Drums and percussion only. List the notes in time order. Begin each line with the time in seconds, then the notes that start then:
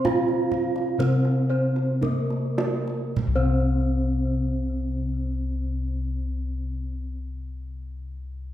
0.05 kendang high, kendang low
0.28 kendang slap
0.51 kendang low
0.76 kendang slap
1.00 kendang low
1.25 kendang slap
1.76 kendang slap
2.03 kendang low
2.30 kendang slap
2.58 kendang high
2.88 kendang slap
3.17 kendang low